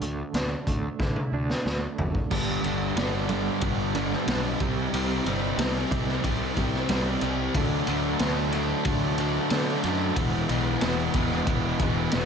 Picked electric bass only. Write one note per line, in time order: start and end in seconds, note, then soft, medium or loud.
0.01 0.22 D2 medium
0.33 0.54 D2 medium
0.67 0.87 D2 medium
0.99 1.20 D3 medium
1.32 1.52 D2 medium
1.65 1.86 D2 medium
1.98 2.18 F#1 medium
2.31 2.57 G1 medium
2.64 2.90 G1 medium
2.96 3.48 G1 medium
3.61 4.14 G1 medium
4.27 4.53 B1 medium
4.60 4.86 C2 medium
4.93 5.19 C2 medium
5.25 5.52 G1 medium
5.57 5.84 C2 medium
5.91 6.17 C2 medium
6.24 6.50 C2 medium
6.57 6.83 C2 medium
6.89 7.15 C2 medium
7.22 7.48 C2 medium
7.54 7.81 D2 medium
7.88 8.14 D2 medium
8.20 8.72 D2 medium
8.85 9.37 D2 medium
9.51 9.77 D3 medium
9.84 10.10 F#2 medium
10.16 10.42 E1 medium
10.49 10.75 B1 medium
10.81 11.07 E1 medium
11.14 11.40 E1 medium
11.47 11.73 E1 loud
11.79 12.05 E1 medium
12.13 12.25 E1 medium